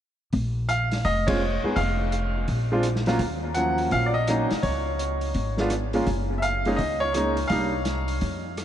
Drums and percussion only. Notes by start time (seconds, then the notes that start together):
0.33 kick, open hi-hat
0.69 closed hi-hat
0.92 snare, open hi-hat
1.05 kick, open hi-hat
1.28 kick, ride
1.77 kick, open hi-hat
2.12 closed hi-hat
2.48 kick, open hi-hat
2.83 cross-stick, closed hi-hat
2.96 snare
3.06 snare, open hi-hat
3.19 kick, open hi-hat
3.55 closed hi-hat
3.78 open hi-hat
3.91 kick, open hi-hat
4.27 cross-stick, closed hi-hat
4.51 snare, open hi-hat
4.63 kick, open hi-hat
4.99 closed hi-hat
5.21 open hi-hat
5.34 kick, open hi-hat
5.57 snare
5.70 cross-stick, closed hi-hat
5.93 open hi-hat
6.07 kick, open hi-hat
6.42 closed hi-hat
6.65 open hi-hat
6.79 kick, open hi-hat
7.14 cross-stick, closed hi-hat
7.37 open hi-hat
7.50 kick, open hi-hat
7.85 snare, closed hi-hat
8.08 open hi-hat
8.21 kick, open hi-hat
8.57 cross-stick, closed hi-hat